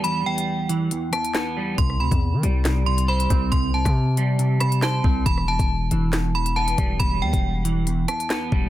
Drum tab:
HH |x--x--x-x-xxx---|x--x--x-x--x-xx-|x--x--x-x-xx----|x--x--x-x--x-xx-|
CP |------------x---|--------x-------|------------x---|--------x-------|
SD |----------r-o---|-r------o-------|---r------r-o---|-r------o-------|
BD |----------------|o--o----------o-|o--o----------o-|o--o----------o-|

HH |x--x--x-x-xxx---|
CP |------------x---|
SD |----------r-o---|
BD |o--o----------o-|